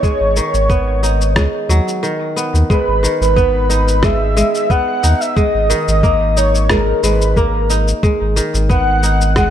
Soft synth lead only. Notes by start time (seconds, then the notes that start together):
Already playing: C#5
2.70 B4
3.21 B4
4.04 E5
4.56 E5
4.71 F#5
5.21 E5
5.36 D#5
5.88 D#5
6.37 C#5
6.70 A#4
7.03 B4
7.36 A#4
8.71 F#5
9.37 F#5